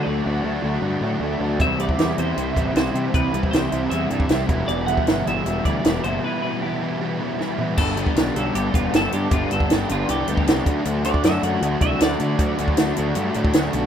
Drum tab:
CC |----------------|----------------|----------------|----------------|
HH |----------------|x-x-x-x-x-x-x-x-|x-x-x-x-x-x-x-x-|x-x-x-x-x-x-x-x-|
SD |----------------|----o-------o---|----o-------o---|----o-------o---|
FT |----------------|----------------|----------------|----------------|
BD |----------------|o--o------o-----|o--o-------o--o-|---o------o-----|

CC |----------------|x---------------|----------------|----------------|
HH |----------------|--x-x-x-x-x-x-x-|x-x-x-x-x-x-x-x-|x-x-x-x-x-x-x-x-|
SD |------------o---|----o-------o-o-|----o-------o---|----o-------o---|
FT |--------------o-|----------------|----------------|----------------|
BD |----------------|o--o------o-----|o--o-------o--o-|---o------o-----|

CC |----------------|
HH |x-x-x-x-x-x-x-x-|
SD |----o-------o---|
FT |----------------|
BD |o--o-------o----|